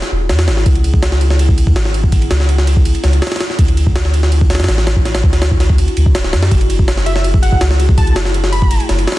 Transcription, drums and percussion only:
0.02 snare medium
0.29 snare loud
0.29 ride medium
0.39 snare loud
0.39 ride medium
0.48 snare loud
0.48 ride medium
0.57 snare soft
0.66 kick loud
0.66 ride medium
0.75 ride soft
0.84 ride medium
0.94 kick medium
1.03 snare loud
1.03 ride medium
1.12 snare soft
1.21 ride medium
1.30 snare medium
1.39 ride medium
1.49 kick loud
1.58 ride medium
1.67 kick medium
1.76 snare loud
1.76 ride medium
1.85 snare medium
1.94 ride medium
2.03 kick medium
2.12 kick loud
2.12 ride medium
2.22 ride soft
2.31 snare loud
2.31 ride medium
2.40 snare soft
2.49 ride medium
2.58 snare soft
2.67 ride medium
2.77 kick medium
2.85 ride medium
2.95 ride soft
3.04 snare soft
3.04 ride medium
3.13 ride soft
3.22 snare medium
3.22 ride medium
3.27 snare medium
3.27 ride medium
3.32 snare medium
3.32 ride medium
3.36 snare medium
3.36 ride medium
3.40 snare loud
3.40 ride medium
3.50 snare soft
3.59 kick loud
3.59 ride medium
3.68 ride soft
3.77 ride medium
3.86 kick loud
3.96 snare loud
3.96 ride medium
4.05 snare soft
4.14 ride medium
4.23 snare medium
4.32 ride medium
4.41 kick loud
4.50 snare medium
4.50 ride medium
4.55 snare medium
4.55 ride medium
4.60 snare medium
4.60 ride medium
4.64 snare medium
4.64 ride medium
4.69 snare loud
4.69 ride medium
4.78 snare medium
4.87 snare loud
4.87 ride medium
4.96 kick medium
5.05 snare soft
5.05 ride medium
5.15 snare loud
5.15 ride medium
5.23 kick medium
5.33 snare soft
5.33 ride medium
5.42 snare loud
5.42 ride medium
5.51 kick medium
5.60 snare soft
5.60 ride medium
5.69 kick loud
5.78 ride medium
5.88 ride soft
5.97 ride medium
6.06 kick medium
6.15 snare loud
6.15 ride medium
6.24 snare soft
6.33 snare loud
6.33 ride medium
6.43 snare loud
6.43 ride medium
6.51 kick loud
6.51 ride medium
6.61 ride soft
6.70 ride medium
6.79 kick medium
6.88 snare loud
6.88 ride medium
6.97 snare soft
7.06 ride medium
7.16 snare medium
7.24 ride medium
7.34 kick loud
7.43 ride medium
7.52 kick medium
7.61 snare loud
7.61 ride medium
7.71 snare medium
7.80 ride medium
7.89 kick medium
7.98 kick loud
7.98 ride medium
8.07 ride soft
8.16 snare loud
8.16 ride medium
8.25 snare soft
8.34 ride medium
8.44 snare medium
8.53 ride medium
8.62 kick medium
8.71 ride medium
8.80 ride soft
8.89 snare medium
8.89 ride medium
8.99 ride soft
9.07 snare medium
9.07 ride medium
9.12 snare medium
9.12 ride medium

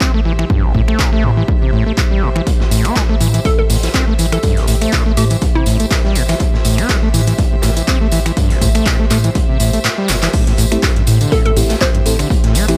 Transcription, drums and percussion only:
0.01 kick loud
0.01 clap loud
0.39 finger snap medium
0.50 kick loud
0.75 kick medium
0.88 finger snap medium
0.99 kick loud
0.99 clap loud
1.48 kick loud
1.98 kick loud
1.98 clap loud
2.36 finger snap medium
2.47 kick loud
2.47 closed hi-hat soft
2.47 closed hi-hat medium
2.47 tambourine soft
2.60 snare soft
2.71 closed hi-hat medium
2.71 open hi-hat loud
2.71 tambourine medium
2.85 finger snap medium
2.85 closed hi-hat medium
2.85 tambourine soft
2.95 kick loud
2.95 snare loud
2.95 clap loud
2.95 closed hi-hat medium
2.95 tambourine soft
3.21 closed hi-hat medium
3.21 open hi-hat medium
3.21 tambourine medium
3.34 closed hi-hat medium
3.34 tambourine soft
3.45 kick loud
3.45 closed hi-hat soft
3.45 closed hi-hat medium
3.45 tambourine soft
3.70 open hi-hat medium
3.70 tambourine medium
3.83 snare medium
3.83 closed hi-hat medium
3.83 tambourine medium
3.94 kick loud
3.94 snare loud
3.94 clap loud
3.94 closed hi-hat soft
3.94 tambourine soft
4.18 closed hi-hat medium
4.18 open hi-hat loud
4.18 tambourine medium
4.32 finger snap medium
4.32 closed hi-hat medium
4.32 tambourine soft
4.43 kick loud
4.43 closed hi-hat medium
4.43 closed hi-hat soft
4.43 tambourine soft
4.57 snare soft
4.57 open hi-hat medium
4.67 closed hi-hat medium
4.67 open hi-hat loud
4.67 tambourine medium
4.81 finger snap medium
4.81 closed hi-hat medium
4.81 closed hi-hat soft
4.81 tambourine soft
4.93 kick loud
4.93 snare loud
4.93 clap loud
4.93 closed hi-hat medium
4.93 tambourine soft
5.17 closed hi-hat medium
5.17 open hi-hat loud
5.17 tambourine medium
5.30 closed hi-hat medium
5.30 tambourine soft
5.41 kick loud
5.41 closed hi-hat medium
5.41 closed hi-hat soft
5.41 tambourine soft
5.66 closed hi-hat medium
5.66 open hi-hat medium
5.66 tambourine medium
5.80 closed hi-hat medium
5.80 tambourine soft
5.90 kick loud
5.90 snare loud
5.90 clap loud
5.90 closed hi-hat medium
5.90 tambourine soft
6.04 snare soft
6.15 closed hi-hat medium
6.15 open hi-hat medium
6.15 tambourine medium
6.28 finger snap medium
6.28 snare medium
6.28 closed hi-hat medium
6.28 tambourine soft
6.40 kick loud
6.40 closed hi-hat medium
6.40 tambourine soft
6.54 snare soft
6.65 closed hi-hat medium
6.65 open hi-hat loud
6.65 tambourine medium
6.78 finger snap medium
6.78 closed hi-hat medium
6.78 tambourine soft
6.89 kick loud
6.89 snare loud
6.89 clap loud
6.89 closed hi-hat medium
6.89 tambourine soft
7.14 closed hi-hat medium
7.14 open hi-hat loud
7.14 tambourine medium
7.27 closed hi-hat medium
7.27 tambourine soft
7.38 kick loud
7.38 closed hi-hat medium
7.38 tambourine soft
7.62 snare loud
7.62 closed hi-hat medium
7.62 open hi-hat medium
7.62 tambourine medium
7.77 closed hi-hat medium
7.77 tambourine soft
7.87 kick loud
7.87 clap loud
7.87 closed hi-hat medium
7.87 tambourine soft
8.12 closed hi-hat medium
8.12 open hi-hat medium
8.12 tambourine medium
8.26 finger snap medium
8.26 closed hi-hat medium
8.26 tambourine soft
8.37 kick loud
8.37 closed hi-hat medium
8.37 tambourine soft
8.50 snare soft
8.50 open hi-hat medium
8.61 kick medium
8.61 closed hi-hat medium
8.61 open hi-hat loud
8.61 tambourine medium
8.75 finger snap medium
8.75 closed hi-hat medium
8.75 closed hi-hat soft
8.75 tambourine soft
8.86 kick loud
8.86 snare loud
8.86 clap loud
8.86 closed hi-hat medium
8.86 tambourine soft
9.10 clap medium
9.10 closed hi-hat medium
9.10 open hi-hat loud
9.10 tambourine medium
9.24 closed hi-hat medium
9.24 tambourine medium
9.35 kick loud
9.35 closed hi-hat medium
9.35 tambourine soft
9.59 closed hi-hat medium
9.59 open hi-hat loud
9.59 tambourine medium
9.73 closed hi-hat medium
9.73 tambourine soft
9.84 snare loud
9.84 clap loud
9.84 closed hi-hat medium
9.84 tambourine soft
10.08 snare medium
10.08 clap medium
10.08 closed hi-hat medium
10.08 open hi-hat medium
10.08 tambourine medium
10.22 snare medium
10.22 clap medium
10.22 closed hi-hat medium
10.22 tambourine medium
10.33 kick loud
10.33 closed hi-hat medium
10.33 crash loud
10.33 tambourine soft
10.47 snare soft
10.47 closed hi-hat medium
10.57 closed hi-hat medium
10.57 open hi-hat loud
10.57 tambourine medium
10.72 finger snap medium
10.72 closed hi-hat medium
10.72 tambourine soft
10.83 kick loud
10.83 snare loud
10.83 clap loud
10.83 closed hi-hat medium
10.83 tambourine soft
10.96 closed hi-hat soft
11.07 closed hi-hat medium
11.07 open hi-hat loud
11.07 tambourine medium
11.21 closed hi-hat medium
11.21 tambourine medium
11.32 kick loud
11.32 closed hi-hat medium
11.32 tambourine soft
11.46 closed hi-hat soft
11.57 open hi-hat loud
11.57 open hi-hat medium
11.57 tambourine loud
11.69 snare medium
11.69 closed hi-hat medium
11.69 tambourine medium
11.81 kick loud
11.81 snare loud
11.81 clap loud
11.81 closed hi-hat medium
11.81 tambourine soft
11.95 closed hi-hat medium
12.06 closed hi-hat medium
12.06 open hi-hat loud
12.06 tambourine medium
12.19 finger snap medium
12.19 closed hi-hat medium
12.19 tambourine medium
12.30 kick loud
12.30 closed hi-hat medium
12.30 tambourine soft
12.44 snare soft
12.44 closed hi-hat medium
12.55 closed hi-hat medium
12.55 open hi-hat loud
12.55 tambourine loud
12.68 finger snap medium
12.68 closed hi-hat soft
12.68 closed hi-hat medium
12.68 tambourine medium

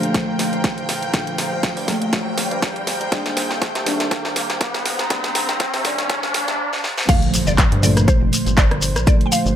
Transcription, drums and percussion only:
0.03 closed hi-hat soft
0.14 kick loud
0.14 snare medium
0.14 closed hi-hat medium
0.39 snare medium
0.39 open hi-hat loud
0.53 closed hi-hat soft
0.64 kick loud
0.64 snare medium
0.64 closed hi-hat medium
0.78 closed hi-hat soft
0.89 snare medium
0.89 open hi-hat loud
1.02 closed hi-hat soft
1.14 kick loud
1.14 snare medium
1.14 closed hi-hat medium
1.27 closed hi-hat soft
1.38 snare medium
1.38 open hi-hat loud
1.63 kick loud
1.63 snare medium
1.63 closed hi-hat medium
1.77 open hi-hat medium
1.88 kick medium
1.88 snare medium
1.88 open hi-hat loud
2.02 closed hi-hat soft
2.13 kick loud
2.13 snare medium
2.13 closed hi-hat medium
2.38 snare medium
2.38 open hi-hat loud
2.51 closed hi-hat soft
2.62 kick loud
2.62 snare medium
2.62 closed hi-hat medium
2.76 closed hi-hat soft
2.87 snare medium
2.87 open hi-hat loud
3.01 closed hi-hat soft
3.12 kick loud
3.12 snare medium
3.12 closed hi-hat medium
3.26 snare medium
3.26 closed hi-hat soft
3.37 snare medium
3.37 open hi-hat loud
3.50 snare medium
3.62 kick loud
3.62 snare loud
3.62 closed hi-hat medium
3.75 snare medium
3.75 closed hi-hat medium
3.86 snare loud
3.86 open hi-hat loud
4.00 snare medium
4.00 closed hi-hat soft
4.11 kick loud
4.11 snare loud
4.11 closed hi-hat medium
4.25 snare medium
4.36 snare loud
4.36 open hi-hat loud
4.50 snare medium
4.50 closed hi-hat soft
4.61 kick loud
4.61 snare loud
4.61 closed hi-hat medium
4.74 snare medium
4.74 closed hi-hat soft
4.86 snare medium
4.86 open hi-hat loud
4.99 snare medium
4.99 closed hi-hat soft
5.10 kick loud
5.10 snare loud
5.10 closed hi-hat medium
5.24 snare medium
5.24 closed hi-hat soft
5.35 snare loud
5.35 open hi-hat loud
5.49 snare medium
5.49 closed hi-hat soft
5.60 kick loud
5.60 snare loud
5.60 closed hi-hat medium
5.74 snare medium
5.74 open hi-hat medium
5.85 kick medium
5.85 snare loud
5.85 open hi-hat loud
5.98 snare medium
5.98 closed hi-hat medium
6.10 kick loud
6.10 snare loud
6.10 closed hi-hat medium
6.23 snare medium
6.34 snare loud
6.34 open hi-hat loud
6.48 snare medium
6.48 closed hi-hat soft
6.73 snare medium
6.84 snare medium
6.98 snare medium
7.09 kick loud
7.09 closed hi-hat medium
7.09 crash loud
7.09 shekere soft
7.22 closed hi-hat soft
7.34 open hi-hat loud
7.34 shekere medium
7.47 shekere medium
7.58 kick loud
7.58 clap loud
7.58 closed hi-hat medium
7.58 shekere soft
7.72 closed hi-hat medium
7.83 open hi-hat loud
7.83 shekere medium
7.97 cross-stick medium
7.97 closed hi-hat medium
7.97 shekere soft
8.08 kick loud
8.08 closed hi-hat medium
8.08 shekere soft
8.33 open hi-hat loud
8.33 shekere medium
8.46 closed hi-hat soft
8.46 shekere medium
8.57 kick loud
8.57 clap loud
8.57 closed hi-hat medium
8.57 shekere soft
8.71 cross-stick medium
8.71 closed hi-hat soft
8.82 open hi-hat loud
8.82 shekere medium
8.96 cross-stick medium
8.96 closed hi-hat soft
8.96 shekere soft
9.07 kick loud
9.07 closed hi-hat medium
9.07 shekere soft
9.21 closed hi-hat soft
9.32 open hi-hat loud
9.32 shekere loud
9.46 shekere medium

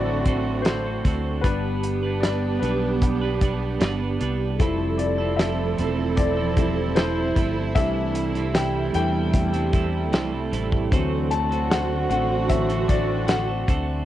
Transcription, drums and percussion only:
0.25 kick medium
0.25 closed hi-hat medium
0.65 snare loud
0.65 closed hi-hat medium
1.05 kick medium
1.05 closed hi-hat medium
1.44 kick medium
1.44 closed hi-hat medium
1.83 closed hi-hat medium
2.23 snare medium
2.23 closed hi-hat medium
2.63 closed hi-hat soft
3.02 kick medium
3.02 closed hi-hat medium
3.41 kick medium
3.41 closed hi-hat medium
3.81 snare loud
3.81 closed hi-hat medium
4.21 closed hi-hat medium
4.60 kick medium
4.60 closed hi-hat medium
4.99 closed hi-hat medium
5.39 snare medium
5.39 closed hi-hat medium
5.78 closed hi-hat medium
6.17 kick medium
6.17 closed hi-hat medium
6.57 kick medium
6.57 closed hi-hat medium
6.96 snare loud
6.96 closed hi-hat medium
7.36 kick medium
7.36 closed hi-hat medium
7.76 kick loud
7.76 closed hi-hat medium
8.15 closed hi-hat medium
8.35 closed hi-hat soft
8.55 snare medium
8.55 closed hi-hat medium
8.94 closed hi-hat medium
9.33 kick medium
9.33 closed hi-hat medium
9.54 closed hi-hat soft
9.73 kick medium
9.73 closed hi-hat medium
10.13 snare loud
10.13 closed hi-hat medium
10.53 closed hi-hat medium
10.72 kick medium
10.92 kick loud
10.92 closed hi-hat medium
11.31 closed hi-hat medium
11.52 closed hi-hat soft
11.71 snare medium
11.71 closed hi-hat medium
12.10 closed hi-hat medium
12.49 kick medium
12.49 closed hi-hat medium
12.70 closed hi-hat soft
12.89 kick medium
12.89 closed hi-hat medium
13.28 snare loud
13.28 closed hi-hat medium
13.68 kick medium
13.68 closed hi-hat medium

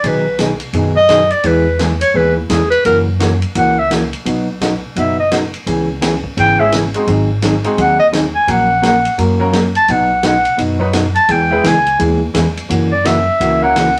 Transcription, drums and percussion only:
0.04 kick soft
0.04 ride medium
0.38 kick soft
0.38 snare medium
0.38 hi-hat pedal medium
0.38 ride medium
0.60 ride soft
0.73 kick soft
0.73 ride medium
1.09 kick soft
1.09 snare medium
1.09 hi-hat pedal medium
1.09 ride medium
1.30 ride soft
1.44 kick soft
1.44 ride medium
1.79 kick soft
1.79 snare medium
1.79 hi-hat pedal medium
1.79 ride medium
2.01 ride medium
2.14 kick soft
2.50 kick soft
2.50 snare medium
2.50 hi-hat pedal medium
2.50 ride medium
2.72 ride soft
2.85 kick soft
2.85 ride medium
3.20 kick soft
3.20 snare medium
3.20 hi-hat pedal medium
3.20 ride medium
3.42 ride soft
3.55 kick soft
3.55 ride medium
3.91 kick soft
3.91 snare medium
3.91 hi-hat pedal medium
3.91 ride medium
4.13 ride soft
4.26 kick soft
4.26 ride medium
4.61 kick soft
4.61 snare medium
4.61 hi-hat pedal medium
4.61 ride medium
4.96 kick soft
4.96 ride medium
5.31 kick soft
5.31 snare medium
5.31 hi-hat pedal medium
5.31 ride medium
5.54 ride soft
5.66 kick soft
5.66 ride medium
6.02 kick soft
6.02 snare medium
6.02 hi-hat pedal medium
6.02 ride medium
6.24 kick soft
6.37 kick soft
6.37 ride medium
6.72 kick soft
6.72 snare medium
6.72 hi-hat pedal medium
6.72 ride medium
6.94 ride soft
7.07 kick soft
7.07 ride medium
7.42 kick soft
7.42 snare medium
7.42 hi-hat pedal medium
7.42 ride medium
7.64 ride soft
7.78 kick soft
7.78 ride medium
8.13 kick soft
8.13 snare medium
8.13 hi-hat pedal medium
8.13 ride medium
8.48 kick soft
8.48 ride medium
8.83 kick soft
8.83 snare medium
8.83 hi-hat pedal medium
8.83 ride medium
9.05 ride medium
9.18 kick soft
9.18 ride medium
9.53 kick soft
9.53 snare medium
9.53 hi-hat pedal medium
9.53 ride medium
9.75 ride medium
9.88 kick soft
9.88 ride medium
10.23 kick soft
10.23 snare medium
10.23 hi-hat pedal medium
10.23 ride medium
10.45 ride soft
10.58 kick soft
10.58 ride medium
10.93 kick soft
10.93 snare medium
10.93 hi-hat pedal medium
10.93 ride medium
11.15 ride soft
11.29 kick soft
11.29 ride medium
11.64 kick soft
11.64 snare medium
11.64 hi-hat pedal medium
11.64 ride medium
11.87 ride soft
12.00 kick soft
12.00 ride medium
12.35 kick soft
12.35 snare medium
12.35 hi-hat pedal medium
12.35 ride medium
12.57 ride medium
12.70 kick soft
12.70 ride medium
13.05 kick soft
13.05 snare medium
13.05 hi-hat pedal medium
13.05 ride medium
13.40 kick soft
13.40 ride medium
13.76 kick soft
13.76 snare medium
13.76 hi-hat pedal medium
13.76 ride medium

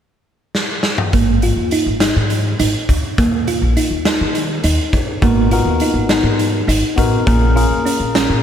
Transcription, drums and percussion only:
0.55 snare medium
0.83 snare medium
0.98 mid tom medium
1.13 kick medium
1.13 closed hi-hat medium
1.42 closed hi-hat medium
1.71 closed hi-hat medium
2.00 snare loud
2.00 closed hi-hat medium
2.30 closed hi-hat medium
2.60 closed hi-hat medium
2.89 kick medium
2.89 closed hi-hat medium
3.18 kick loud
3.18 closed hi-hat medium
3.48 closed hi-hat medium
3.77 closed hi-hat medium
4.05 snare loud
4.05 closed hi-hat medium
4.35 closed hi-hat medium
4.64 closed hi-hat medium
4.93 kick medium
4.93 closed hi-hat medium
5.22 kick medium
5.22 closed hi-hat medium
5.51 closed hi-hat medium
5.80 closed hi-hat medium
6.09 snare loud
6.09 closed hi-hat medium
6.39 closed hi-hat medium
6.69 closed hi-hat medium
6.98 kick medium
6.98 closed hi-hat medium
7.27 kick loud
7.27 closed hi-hat medium
7.57 closed hi-hat medium
7.86 closed hi-hat medium
8.15 snare loud
8.15 closed hi-hat medium

